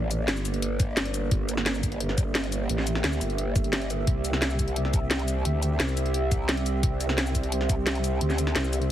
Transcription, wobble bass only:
0.00 0.27 A1 loud
0.28 1.30 G1 loud
1.31 2.68 G1 loud
2.69 3.02 A1 loud
3.04 3.20 D2 loud
3.21 4.06 G1 loud
4.07 5.44 C2 loud
5.45 5.78 D2 loud
5.80 6.82 C2 loud
6.83 8.20 C2 loud
8.21 8.54 D2 loud
8.56 8.92 C2 loud

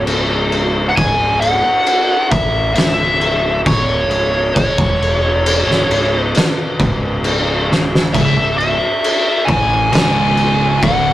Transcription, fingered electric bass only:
0.00 0.92 C#1 loud
0.97 1.17 C#1 medium
1.18 1.60 C#1 medium
2.31 2.73 A1 medium
2.75 3.61 C#1 medium
3.65 4.07 D1 loud
4.08 4.51 C#1 medium
4.78 5.63 E1 medium
5.66 5.87 C#1 medium
5.89 6.31 C#1 medium
6.80 8.10 C#1 loud
8.14 8.35 C#1 medium
8.36 8.77 C#1 medium
9.49 9.90 A1 medium
9.92 10.78 C#1 medium
10.83 11.13 D1 medium

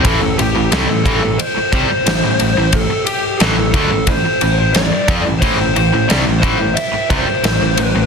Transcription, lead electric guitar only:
0.04 0.36 A4 medium
0.38 0.72 G4 medium
0.72 1.03 A4 medium
1.04 1.40 A4 medium
1.38 1.71 C5 medium
1.72 2.76 C5 loud
2.73 3.05 A4 medium
3.06 3.39 G4 medium
3.39 3.71 A4 medium
3.72 4.08 A4 medium
4.07 4.54 C5 medium
4.59 4.73 C5 loud
4.74 5.21 D5 medium
5.40 5.73 C5 loud
5.74 6.06 C5 loud
6.09 6.18 D5 loud
6.40 6.75 C5 loud
6.75 7.07 E5 medium
7.10 7.80 C5 loud
7.80 8.06 B4 loud

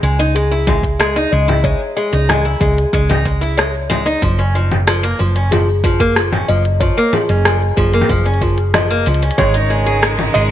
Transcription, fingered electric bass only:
0.03 1.25 C#2 medium
1.33 1.73 C#2 loud
2.13 2.54 C#2 medium
2.61 2.84 C#2 medium
2.93 4.15 C#2 medium
4.22 5.12 F#1 loud
5.20 6.41 F#1 medium
6.49 6.90 F#1 medium
7.29 7.70 F#1 medium
7.77 8.00 F#1 medium
8.09 9.06 F#1 medium
9.07 9.30 C#2 medium
9.38 10.28 G#1 loud
10.35 10.51 G#1 medium

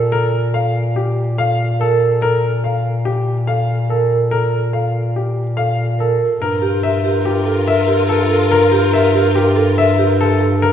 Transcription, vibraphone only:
0.12 0.39 A4 medium
0.54 0.81 A4 medium
1.38 1.65 A4 medium
1.80 2.07 A#4 medium
2.22 2.49 A4 medium
2.63 2.91 A4 medium
3.48 3.75 A4 medium
3.89 4.17 A#4 medium
4.31 4.59 A4 medium
4.73 5.01 A4 medium
5.57 5.84 A4 medium
5.99 6.26 A#4 medium
6.62 6.89 G4 medium
7.04 7.31 G4 medium
7.46 7.73 A4 medium
7.88 8.15 G4 medium
8.30 8.57 A4 medium
8.72 8.99 G4 medium
9.14 9.41 G4 medium
9.56 9.83 A4 loud
9.98 10.25 G4 medium
10.41 10.67 A4 medium

